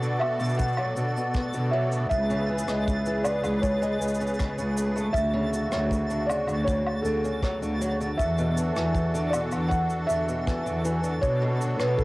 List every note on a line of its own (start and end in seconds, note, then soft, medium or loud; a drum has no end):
0.00 0.10 B2 medium
0.00 0.19 D3 medium
0.00 2.08 B3 medium
0.00 2.07 F#4 medium
0.00 2.07 A4 medium
0.00 2.08 D5 medium
0.00 0.24 F#5 loud
0.00 12.04 A6 medium
0.00 cabasa soft
0.19 0.38 B2 medium
0.19 0.59 E5 medium
0.19 low woodblock medium
0.40 0.86 B2 medium
0.40 0.58 D3 medium
0.40 cabasa soft
0.40 low woodblock soft
0.44 cabasa soft
0.49 cabasa soft
0.54 1.68 F#5 medium
0.54 cabasa soft
0.59 kick medium
0.59 cabasa soft
0.59 cabasa medium
0.63 cabasa soft
0.68 cabasa soft
0.73 cabasa soft
0.77 0.95 F#3 medium
0.77 low woodblock medium
0.97 1.09 B2 medium
0.97 1.14 D3 medium
0.97 cabasa medium
1.16 1.34 B2 medium
1.16 cabasa soft
1.34 kick loud
1.34 cross-stick medium
1.34 cabasa soft
1.53 2.00 B2 medium
1.53 1.71 D3 medium
1.53 cabasa soft
1.71 1.91 F#3 medium
1.71 2.07 E5 medium
1.92 2.11 D3 medium
1.92 cabasa soft
2.09 2.57 C#2 medium
2.09 5.11 C#3 medium
2.09 5.12 G#4 medium
2.09 5.12 B4 medium
2.09 3.20 E5 medium
2.09 kick loud
2.09 cabasa medium
2.30 2.47 C#3 medium
2.30 cabasa soft
2.49 2.66 E3 medium
2.58 cabasa medium
2.68 3.14 C#2 medium
2.68 2.86 G#3 medium
2.68 cross-stick medium
2.68 cabasa soft
2.88 kick loud
2.88 cabasa medium
3.06 3.23 E3 medium
3.06 cabasa soft
3.23 3.42 C#3 medium
3.23 3.63 D5 medium
3.23 cabasa medium
3.23 low woodblock medium
3.43 3.90 C#2 medium
3.43 3.62 E3 medium
3.43 cabasa soft
3.43 low woodblock medium
3.62 4.72 C#5 medium
3.62 kick loud
3.62 cabasa medium
3.82 3.99 G#3 medium
3.82 cabasa soft
4.01 4.13 C#2 medium
4.01 4.18 G#3 medium
4.01 cabasa medium
4.08 cabasa medium
4.14 cabasa medium
4.20 4.37 C#3 medium
4.20 cabasa soft
4.27 cabasa soft
4.34 cabasa soft
4.39 4.56 C#3 loud
4.39 kick medium
4.39 cross-stick medium
4.39 cabasa medium
4.58 5.04 C#2 medium
4.58 4.75 C#4 medium
4.58 cabasa soft
4.77 4.94 A3 medium
4.77 cabasa medium
4.96 5.13 A3 medium
4.96 cabasa soft
5.13 5.60 D2 loud
5.13 8.15 C#3 medium
5.13 12.04 F#4 medium
5.13 6.31 E5 loud
5.13 kick medium
5.13 cabasa soft
5.34 5.51 C#3 medium
5.53 5.70 D3 medium
5.53 cabasa medium
5.72 6.18 D2 loud
5.72 5.90 F#3 medium
5.72 cross-stick medium
5.72 cabasa soft
5.91 kick medium
5.91 cabasa soft
6.10 6.27 D3 medium
6.10 cabasa soft
6.26 6.46 C#3 medium
6.26 6.63 D5 medium
6.26 cabasa medium
6.26 low woodblock medium
6.47 6.94 D2 medium
6.47 6.66 D3 medium
6.47 cabasa medium
6.47 low woodblock medium
6.64 7.01 C#5 medium
6.64 kick loud
6.64 cabasa medium
6.87 low woodblock medium
7.02 7.17 D2 medium
7.02 7.22 D3 medium
7.02 7.75 A4 medium
7.02 cabasa medium
7.24 7.42 C#3 medium
7.24 cabasa soft
7.43 7.60 F#3 medium
7.43 kick loud
7.43 cross-stick medium
7.43 cabasa soft
7.62 8.08 D2 medium
7.62 7.79 D3 medium
7.62 cabasa soft
7.81 7.99 F#3 medium
7.81 cabasa medium
8.00 8.19 D3 medium
8.00 cabasa soft
8.17 8.65 E2 loud
8.17 11.19 E3 medium
8.17 11.19 D4 medium
8.17 11.19 A4 medium
8.17 9.28 E5 medium
8.17 kick medium
8.17 cabasa medium
8.38 8.55 B2 medium
8.38 cabasa soft
8.57 8.74 D3 medium
8.57 cabasa medium
8.76 9.22 E2 medium
8.76 8.94 E3 medium
8.76 cross-stick medium
8.76 cabasa soft
8.95 kick medium
8.95 cabasa medium
9.14 9.31 D3 medium
9.14 cabasa soft
9.30 9.50 B2 medium
9.30 9.39 D5 medium
9.30 cabasa medium
9.30 low woodblock medium
9.51 9.98 E2 medium
9.51 9.70 D3 medium
9.51 cabasa soft
9.51 low woodblock medium
9.68 10.05 F#5 loud
9.68 kick medium
9.68 cabasa soft
9.90 cabasa medium
10.07 10.21 E2 medium
10.07 10.26 D3 medium
10.07 10.80 E5 loud
10.07 cabasa medium
10.28 10.46 B2 medium
10.28 cabasa soft
10.47 10.64 E3 loud
10.47 kick loud
10.47 cross-stick medium
10.47 cabasa soft
10.66 11.12 E2 medium
10.66 10.83 D3 medium
10.66 cabasa medium
10.85 11.03 E3 medium
10.85 cabasa medium
11.04 11.23 D3 medium
11.04 cabasa soft
11.21 11.69 B2 medium
11.21 12.04 B3 medium
11.21 12.04 D4 medium
11.21 12.04 A4 medium
11.21 11.81 C#5 loud
11.21 kick loud
11.21 cabasa medium
11.42 11.59 B2 medium
11.61 11.78 D3 medium
11.61 cabasa medium
11.78 12.04 B2 loud
11.78 11.98 F#3 medium
11.78 11.98 B4 medium
11.78 cross-stick medium
11.78 cabasa soft
11.97 12.04 A4 medium
11.97 kick medium
11.97 cabasa soft